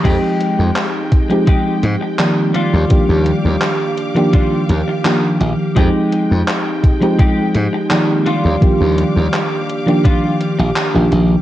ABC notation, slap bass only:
X:1
M:4/4
L:1/16
Q:1/4=84
K:Fdor
V:1 name="Slap bass" clef=bass
F,, z2 F,, z6 A,, z4 E,, | z E,, z E,, z6 E,, z3 B,,, z | F,, z2 F,, z6 A,, z4 E,, | z E,, z E,, z6 z B,,, z B,,, B,,, z |]